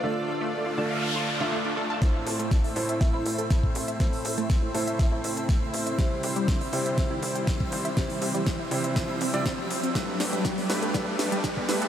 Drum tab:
HH |----------------|x-oxxooxx-oxx-ox|xooxx-oxx-oxx-ox|x-oxxooxx-oxx-ox|
SD |----------------|o---o---o---o---|o---o---o---o---|o---o---o---o---|
BD |----------------|o---o---o---oo--|o---o---o---o---|o---o---o---oo--|

HH |xooxx-oxx-oxx-ox|x-oxxooxx-oxx-ox|
SD |o---o---o---o---|o-o-o-o-o-o-o-o-|
BD |o---o---o---o---|o---o---o---oo--|